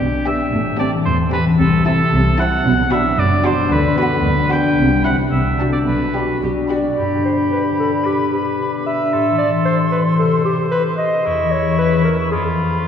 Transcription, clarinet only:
6.14 F#4
6.70 D5
7.25 C5
7.52 B4
7.80 A4
8.05 G4
8.32 G4
8.86 E5
9.38 D5
9.65 C5
9.92 B4
10.18 A4
10.45 G4
10.71 B4
10.98 D#5
11.51 C#5
11.78 B4
12.05 A#4
12.31 G#4

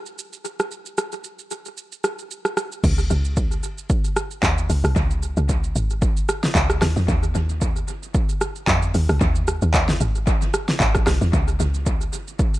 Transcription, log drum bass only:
2.84 C#2
3.11 C#2
4.43 D#2
4.70 C#2
4.84 C2
4.96 C#2
5.37 C#2
5.76 G#1
6.55 C#2
6.82 D#2
6.96 F2
7.08 D#2
7.35 D#2
8.67 F2
8.95 D#2
9.09 C#2
9.21 D#2
9.62 D#2
10.01 G#1
10.80 G#1
11.07 C2
11.21 E2
11.33 C#2
11.60 C#2

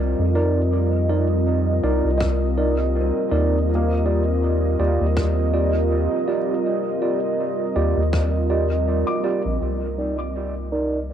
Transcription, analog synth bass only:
Already playing: C2
0.19 F2
1.84 C2
2.05 C2
3.32 D#2
4.80 D#2
5.01 D#2
7.76 D#2
7.97 D#2
9.45 A#1
9.61 C2

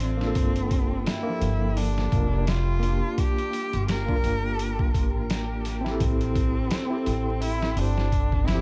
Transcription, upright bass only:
Already playing: A1
0.36 G1
1.41 G1
2.12 F1
3.74 G1
4.24 G1
5.14 A1
6.00 A1
7.07 A1
7.77 G1

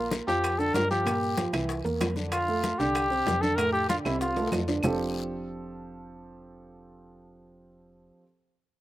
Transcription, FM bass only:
Already playing: A#1
0.28 F2
0.74 G2
1.53 C2
1.85 E2
2.01 F2
2.80 C2
3.27 F2
4.05 C2
4.52 F2
4.84 F1

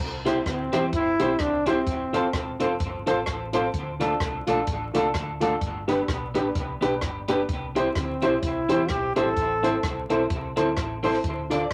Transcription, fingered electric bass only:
0.00 C2
0.46 D2
0.73 E2
0.93 G1
1.20 B1
1.40 C2
1.87 F1
2.34 E1
2.60 F1
2.80 G1
3.07 A1
3.27 A1
3.74 D2
4.20 C2
4.47 B1
4.67 A1
4.95 C2
5.15 D2
5.61 G1
6.09 B1
6.35 A1
6.55 C2
6.82 B1
7.02 G1
7.49 C2
7.96 D2
8.24 B1
8.43 C2
8.70 E2
8.90 B1
9.17 A1
9.37 A1
9.83 C2
10.10 B1
10.30 C2
10.58 D2
10.77 A1
11.24 D2

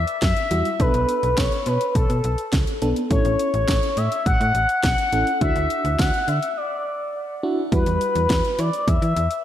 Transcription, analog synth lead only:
Already playing: E5
0.22 E5
0.80 B4
1.38 C#5
1.67 B4
1.95 A4
3.11 C#5
3.97 E5
4.26 F#5
4.84 F#5
5.41 E5
5.99 F#5
6.28 E5
6.57 D5
7.72 B4
8.59 D5
8.88 E5

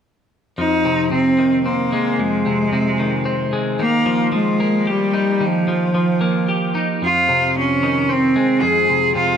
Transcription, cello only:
0.59 D#4
1.12 C4
1.65 A#3
2.19 G#3
3.81 A#3
4.35 G#3
4.89 G3
5.45 F3
7.06 F4
7.59 C#4
8.12 C4
8.61 G#4
9.16 F4

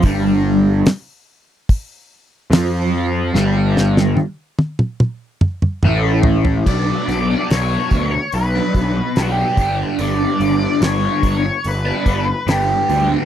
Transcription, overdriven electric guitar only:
0.04 G2 G3
2.52 F3 F4
3.35 G2 G3
5.85 A2 A3
6.67 B2 F#3 B3 D4
7.29 F#3 B3 D4
7.51 B2 F#3 B3 D4
7.72 F#3 B3 D4
8.14 muted overdriven electric guitar stroke
8.55 F#3 B3 D4
8.75 B2 F#3 B3 D4
8.97 muted overdriven electric guitar stroke
9.17 B2 F#3 B3 D4
9.59 G2 D3 G3 B3 D4
9.81 G3 B3 D4
10.00 G2 D3 G3 B3 D4
10.61 G3 B3 D4
10.81 G2 D3 G3 B3 D4
11.03 G3 B3 D4
11.45 muted overdriven electric guitar stroke
11.85 G3 B3 D4
12.06 D3 G3 B3 D4
12.28 muted overdriven electric guitar stroke
12.47 G2 D3 G3 B3 D4
12.88 D3 G3 B3 D4
13.09 G3 B3 D4

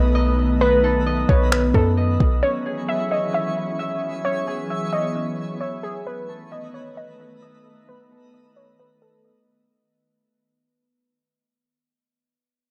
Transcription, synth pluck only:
Already playing: D#5
0.61 B4
1.29 C#5
1.52 B4
1.75 A4
2.43 C#5
2.89 E5
3.12 D#5
3.34 E5
4.25 C#5
4.93 D#5
5.61 C#5
5.83 G#4
6.07 B4
6.52 D#5
6.74 C#5
6.97 D#5
7.89 B4
8.56 C#5
8.79 B4
9.02 A4

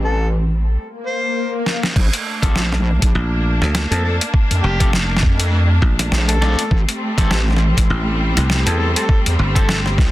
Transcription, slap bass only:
3.15 A#1
3.61 D2
3.91 F2
4.64 F1
5.82 A#1
7.90 A1
8.37 C2
8.67 E2
9.39 G1

